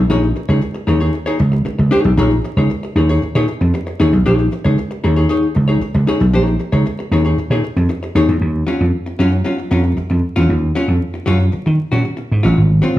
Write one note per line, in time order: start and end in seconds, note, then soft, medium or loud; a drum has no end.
0.10 0.31 A#1 loud
0.10 0.27 D#4 medium
0.10 0.23 G#4 medium
0.10 0.22 C#5 medium
0.23 muted hollow-body jazz guitar stroke soft
0.36 muted hollow-body jazz guitar stroke soft
0.49 0.59 C#2 medium
0.49 0.60 D#4 medium
0.49 0.61 G#4 medium
0.49 0.62 C#5 medium
0.61 muted hollow-body jazz guitar stroke soft
0.74 muted hollow-body jazz guitar stroke soft
0.87 1.09 D#2 medium
0.87 1.01 D#4 medium
0.87 1.00 G#4 medium
0.87 0.99 C#5 medium
1.00 1.13 D#4 medium
1.00 1.13 G#4 medium
1.00 1.14 C#5 medium
1.14 muted hollow-body jazz guitar stroke soft
1.26 1.38 D#4 medium
1.26 1.38 G#4 medium
1.26 1.39 C#5 medium
1.39 1.61 C#2 medium
1.39 muted hollow-body jazz guitar stroke medium
1.52 muted hollow-body jazz guitar stroke soft
1.65 muted hollow-body jazz guitar stroke soft
1.65 muted slap bass stroke soft
1.79 1.89 C#2 medium
1.79 muted hollow-body jazz guitar stroke soft
1.91 2.11 D#4 medium
1.91 2.04 G#4 loud
1.91 2.03 C#5 medium
2.04 2.15 B1 medium
2.04 muted hollow-body jazz guitar stroke medium
2.17 2.39 A#1 medium
2.17 2.34 D#4 medium
2.17 2.32 G#4 loud
2.17 2.30 C#5 medium
2.31 muted hollow-body jazz guitar stroke soft
2.44 muted hollow-body jazz guitar stroke soft
2.57 2.67 C#2 medium
2.57 2.69 D#4 soft
2.57 2.70 G#4 medium
2.57 2.70 C#5 medium
2.70 muted hollow-body jazz guitar stroke soft
2.83 muted hollow-body jazz guitar stroke medium
2.96 3.17 D#2 loud
2.96 3.09 D#4 medium
2.96 3.09 G#4 medium
2.96 3.08 C#5 medium
3.09 3.21 D#4 medium
3.09 3.22 G#4 medium
3.09 3.22 C#5 medium
3.22 muted hollow-body jazz guitar stroke soft
3.35 3.46 A#2 loud
3.35 3.47 D#4 medium
3.35 3.47 G#4 medium
3.35 3.48 C#5 medium
3.48 muted hollow-body jazz guitar stroke soft
3.61 3.71 F2 medium
3.61 muted hollow-body jazz guitar stroke soft
3.74 muted hollow-body jazz guitar stroke medium
3.87 muted hollow-body jazz guitar stroke soft
4.00 4.10 D#2 medium
4.00 4.16 D#4 medium
4.00 4.13 G#4 medium
4.00 4.12 C#5 medium
4.13 4.23 B1 loud
4.13 muted hollow-body jazz guitar stroke soft
4.26 4.47 A#1 loud
4.26 4.45 D#4 medium
4.26 4.39 G#4 medium
4.26 4.38 C#5 medium
4.39 muted hollow-body jazz guitar stroke soft
4.52 muted hollow-body jazz guitar stroke soft
4.64 4.75 C#2 medium
4.64 4.77 D#4 medium
4.64 4.78 G#4 medium
4.64 4.78 C#5 medium
4.78 muted hollow-body jazz guitar stroke soft
4.91 muted hollow-body jazz guitar stroke medium
5.04 5.25 D#2 medium
5.04 5.17 D#4 medium
5.04 5.16 G#4 medium
5.04 5.15 C#5 medium
5.16 5.28 D#4 medium
5.16 5.29 G#4 medium
5.16 5.29 C#5 medium
5.29 5.46 D#4 medium
5.29 5.46 G#4 medium
5.29 5.47 C#5 medium
5.55 5.77 C#2 medium
5.55 muted hollow-body jazz guitar stroke soft
5.68 5.80 D#4 medium
5.68 5.81 G#4 medium
5.68 5.81 C#5 medium
5.81 muted hollow-body jazz guitar stroke soft
5.81 muted slap bass stroke soft
5.95 6.05 C#2 loud
5.95 muted hollow-body jazz guitar stroke medium
6.07 6.24 D#4 medium
6.07 6.21 G#4 medium
6.07 6.19 C#5 medium
6.21 6.34 B1 medium
6.21 muted hollow-body jazz guitar stroke medium
6.33 6.55 A#1 loud
6.33 6.53 D#4 medium
6.33 6.47 G#4 medium
6.33 6.46 C#5 medium
6.47 muted hollow-body jazz guitar stroke soft
6.59 muted hollow-body jazz guitar stroke soft
6.72 6.83 C#2 medium
6.72 6.85 D#4 soft
6.72 6.85 G#4 medium
6.72 6.85 C#5 medium
6.86 muted hollow-body jazz guitar stroke soft
6.99 muted hollow-body jazz guitar stroke medium
7.11 7.33 D#2 loud
7.11 7.25 D#4 medium
7.11 7.24 G#4 medium
7.11 7.23 C#5 medium
7.25 7.37 D#4 soft
7.25 7.38 G#4 medium
7.25 7.37 C#5 medium
7.37 muted slap bass stroke soft
7.37 muted hollow-body jazz guitar stroke soft
7.50 7.61 A#2 loud
7.50 7.62 D#4 medium
7.50 7.63 G#4 medium
7.50 7.64 C#5 medium
7.64 muted hollow-body jazz guitar stroke soft
7.76 7.87 F2 medium
7.76 muted hollow-body jazz guitar stroke soft
7.89 muted hollow-body jazz guitar stroke medium
8.03 muted hollow-body jazz guitar stroke medium
8.15 8.26 D#2 medium
8.15 8.32 D#4 loud
8.15 8.29 G#4 medium
8.15 8.27 C#5 loud
8.28 8.39 E2 medium
8.28 muted hollow-body jazz guitar stroke medium
8.41 8.63 D#2 medium
8.67 8.84 F#3 medium
8.67 8.84 C#4 medium
8.67 8.84 F4 medium
8.81 8.91 F2 medium
9.06 muted hollow-body jazz guitar stroke soft
9.19 9.41 F#2 medium
9.19 9.36 F#3 medium
9.19 9.32 C#4 loud
9.19 9.31 F4 medium
9.32 muted hollow-body jazz guitar stroke medium
9.45 9.62 F#3 medium
9.45 9.58 C#4 medium
9.45 9.57 F4 medium
9.58 muted hollow-body jazz guitar stroke soft
9.71 9.93 F2 medium
9.71 9.84 F#3 medium
9.71 9.84 C#4 medium
9.71 9.83 F4 medium
9.84 muted hollow-body jazz guitar stroke soft
9.97 muted hollow-body jazz guitar stroke soft
9.97 muted slap bass stroke soft
10.10 10.21 F2 loud
10.10 muted hollow-body jazz guitar stroke soft
10.36 10.47 E2 medium
10.36 10.54 F#3 medium
10.36 10.53 C#4 medium
10.36 10.53 F4 medium
10.49 10.71 D#2 loud
10.75 10.92 F#3 medium
10.75 10.92 C#4 medium
10.75 10.93 F4 medium
10.88 10.99 F2 medium
11.14 muted hollow-body jazz guitar stroke soft
11.26 11.49 F#2 medium
11.26 11.43 F#3 medium
11.26 11.39 C#4 loud
11.26 11.38 F4 loud
11.39 muted hollow-body jazz guitar stroke soft
11.52 muted hollow-body jazz guitar stroke soft
11.52 muted slap bass stroke soft
11.66 11.77 D#3 loud
11.66 muted hollow-body jazz guitar stroke medium
11.92 12.03 A#2 medium
11.92 12.03 F#3 medium
11.92 12.04 C#4 medium
11.92 12.05 F#4 medium
12.04 muted hollow-body jazz guitar stroke soft
12.17 muted hollow-body jazz guitar stroke medium
12.31 12.42 G#2 medium
12.43 12.55 A1 medium
12.43 12.61 F#3 medium
12.43 12.61 C#4 medium
12.43 12.60 F4 medium
12.58 12.79 G#1 loud
12.82 12.99 F#3 medium
12.82 12.99 C4 medium
12.82 12.99 F4 medium